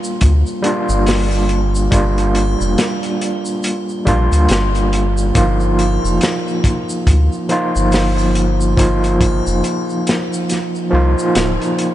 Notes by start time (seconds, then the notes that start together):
Already playing: G3 A#3 D4 F4
0.04 shaker
0.21 D2, kick, closed hi-hat, shaker
0.47 shaker
0.62 G3 A#3 D4 F4, closed hi-hat
0.89 G1, shaker
1.06 snare, open hi-hat, shaker
1.31 triangle, shaker
1.49 closed hi-hat
1.75 shaker
1.91 G1 G3 A#3 D4 F4, kick, closed hi-hat, shaker
2.18 closed hi-hat, shaker
2.35 closed hi-hat, triangle
2.60 F1, triangle, shaker
2.78 snare, closed hi-hat, shaker
3.03 closed hi-hat, shaker
3.21 closed hi-hat
3.45 shaker
3.63 closed hi-hat, shaker
3.89 shaker
4.05 A#1 G3 A#3 D4 F4, kick, closed hi-hat
4.32 D2, closed hi-hat, shaker
4.49 G1, snare, closed hi-hat, shaker
4.75 closed hi-hat, shaker
4.93 closed hi-hat
5.18 shaker
5.34 G1 F3 A#3 D#4 F4, kick, closed hi-hat, shaker
5.60 shaker
5.79 closed hi-hat, triangle
6.04 F1, triangle, shaker
6.21 snare, closed hi-hat, shaker
6.48 shaker
6.64 kick, closed hi-hat
6.89 shaker
7.07 D2, kick, closed hi-hat, shaker
7.32 shaker
7.49 F3 A#3 D#4 F4, closed hi-hat
7.76 G1, shaker
7.92 snare, open hi-hat, shaker
8.18 triangle, shaker
8.35 closed hi-hat
8.61 shaker
8.77 G1 F3 A#3 D#4 F4, kick, closed hi-hat, shaker
9.04 closed hi-hat, shaker
9.21 kick, closed hi-hat, triangle
9.47 F1, triangle, shaker
9.64 closed hi-hat, shaker
9.90 shaker
10.07 snare, closed hi-hat
10.33 shaker
10.49 snare, closed hi-hat, shaker
10.75 shaker
10.91 C2 F3 A#3 D#4 F4
11.19 shaker
11.35 D1, snare, closed hi-hat, shaker
11.61 closed hi-hat, shaker
11.78 closed hi-hat